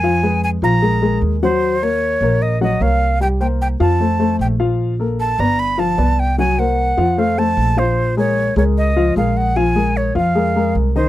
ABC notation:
X:1
M:4/4
L:1/8
Q:1/4=151
K:Bbm
V:1 name="Flute"
a2 a b3 z c- | c d3 e e f2 | =g g g =a3 g z | z2 =a b =b a2 =g |
a g3 f =a2 c- | c d2 d e2 f g | a2 d f4 c |]
V:2 name="Grand piano"
[F,Ff] [A,A_c]2 [F,Ff] [A,AB] [A,AB]2 [G,Gg]- | [G,Gg] [B,Bd]2 [B,Bd]2 [G,Gg] [B,Bd]2 | [=G,=G=g] [B,Bc]2 [F,Ff] [=A,=Ac] [A,Ac]2 [F,Ff]- | [F,Ff] [B,=AB]2 [_C_c=d]2 [F,Ff] [=B,=Bd]2 |
[G,Gg] [B,Bc]2 [F,Ff] [=A,=Ac] [A,Ac]2 [F,Ff]- | [F,Ff] [A,AB]2 [A,AB]2 [F,Ff] [A,AB]2 | [F,Ff] [A,AB]2 [F,Ff] [A,AB] [A,AB]2 [E,Ee] |]
V:3 name="Upright bass" clef=bass
F,,3 B,,,3 E,,2- | E,,3 B,,,3 C,,2- | C,,3 F,,3 B,,,2- | B,,,3 =G,,,3 C,,2- |
C,,3 F,,3 B,,,2- | B,,,3 D,,3 B,,,2- | B,,,3 F,,3 C,,2 |]